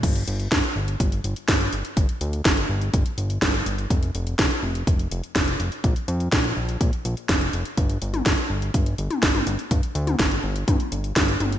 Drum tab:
CC |x---------------|----------------|----------------|----------------|
HH |xxxxxx-xxxxxxxxx|xxxxxx-xxxxxxxxx|xxxxxx-xxxxxxxxx|xxxxxx-xxxxxxxxx|
SD |----o-------o---|----o-------o---|----o-------o---|----o-------o---|
T1 |----------------|----------------|----------------|----------------|
BD |o---o---o---o---|o---o---o---o---|o---o---o---o---|o---o---o---o---|

CC |----------------|----------------|
HH |xxxxxx-xxxxxxxxx|xxxxxx-xxxxxxxxx|
SD |----o-------o---|----o-------o---|
T1 |---o-------o-o--|---o----o-----o-|
BD |o---o---o---o---|o---o---o---o---|